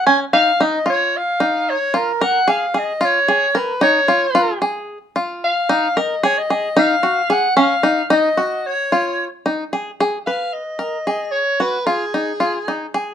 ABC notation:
X:1
M:7/8
L:1/16
Q:1/4=112
K:Dbmix
V:1 name="Soprano saxophone"
a2 f2 e2 d2 f4 d2 | B2 g2 f2 e2 d4 c2 | d6 z6 f2- | f2 e2 d e3 f4 g2 |
f4 e4 d4 z2 | z6 f2 e6 | d2 c2 A8 z2 |]
V:2 name="Five-string banjo"
D2 E2 E2 F4 E4 | F2 B2 A2 A2 F2 A2 B2 | E2 F2 F2 A4 F4 | E2 B2 A2 A2 E2 G2 A2 |
D2 E2 E2 G4 F4 | E2 A2 A2 c4 B2 A2- | A2 G2 F2 E2 F2 E2 A2 |]